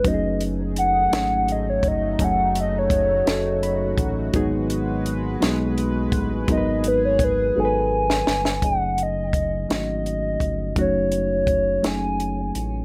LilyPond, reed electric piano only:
\new Staff \with { instrumentName = "Reed electric piano" } { \time 6/8 \key fis \dorian \tempo 4. = 56 << { r2. | r2 b''4 | r2. | r2. |
r2. | r2. | } \\ { <fis a cis' dis' fis' gis'>4 r8 <fis a cis' dis' gis'>4 r8 | <fis a cis' dis' gis'>4 r8 <fis a cis' dis' a'>4 r8 | <fis gis b dis' gis'>4 r8 <fis gis b dis' gis'>4 r8 | <fis gis b dis' ais' b'>4 r8 <fis gis b dis' a' b'>4 r8 |
<fis a cis' dis' gis'>4 r8 <fis a cis' dis' fis'>4 r8 | <fis a cis' dis' fis'>4 r8 <fis a cis' dis' gis'>4 r8 | } >> }